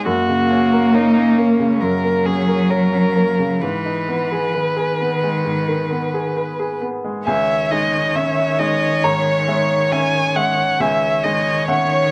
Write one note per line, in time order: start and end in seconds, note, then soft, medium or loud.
0.06 1.77 F#2 soft
0.06 1.82 A#3 medium
0.06 0.96 F#4 soft
0.29 0.63 C#3 soft
0.51 0.85 C#4 soft
0.73 1.07 A#4 soft
0.94 1.39 D#4 soft
0.94 1.29 C#5 soft
1.16 1.51 C#4 soft
1.38 1.73 A#3 soft
1.38 1.82 C#4 soft
1.60 1.94 C#3 soft
1.81 3.58 F#2 soft
1.81 3.62 F#3 medium
1.81 2.27 A#4 soft
2.04 2.39 A#3 soft
2.25 2.61 C#4 soft
2.25 2.72 G#4 soft
2.48 2.84 A#4 soft
2.69 3.63 A#4 soft
2.69 3.06 C#5 soft
2.93 3.29 C#4 soft
3.16 3.53 A#3 soft
3.39 3.62 C#3 soft
3.61 5.41 G#2 soft
3.61 4.56 E3 soft
3.61 6.81 B4 soft
3.86 4.22 D#4 soft
4.08 4.45 B3 soft
4.32 4.68 G#4 soft
4.54 6.37 D#3 soft
4.54 4.91 B4 soft
4.76 5.13 G#4 soft
5.01 5.36 B3 soft
5.23 5.59 G#3 soft
5.45 7.22 G#2 soft
5.68 6.04 D#3 soft
5.91 6.27 B3 soft
6.14 6.50 G#4 soft
6.37 6.73 B4 soft
6.59 6.95 G#4 soft
6.81 7.18 B3 soft
7.05 7.27 G#3 soft
7.25 9.00 C#2 soft
7.25 10.76 D#3 soft
7.25 10.76 C#5 soft
7.25 7.72 E5 soft
7.25 9.00 G#5 medium
7.70 8.12 G#3 soft
7.70 8.12 D#4 soft
7.70 8.17 D#5 soft
8.15 8.56 C#4 soft
8.15 8.60 E5 soft
8.15 8.56 E5 soft
8.59 9.00 G#3 soft
8.59 9.00 D#4 soft
8.59 9.05 D#5 soft
9.04 9.75 G#2 soft
9.04 9.93 C#5 soft
9.04 10.76 A#5 medium
9.48 9.88 G#3 soft
9.48 9.88 E5 soft
9.92 10.32 C#4 soft
9.92 10.32 E5 soft
9.92 10.37 G#5 medium
10.35 10.76 G#3 soft
10.35 10.76 E5 soft
10.35 10.82 F#5 soft
10.80 12.11 C#2 soft
10.80 12.11 D#3 soft
10.80 12.11 C#5 soft
10.80 11.25 E5 medium
10.80 11.65 G#5 medium
11.24 11.64 G#3 soft
11.24 11.64 D#4 soft
11.24 11.68 D#5 soft
11.68 12.08 C#4 soft
11.68 12.11 C#5 soft
11.68 12.08 E5 soft
11.68 12.11 F#5 medium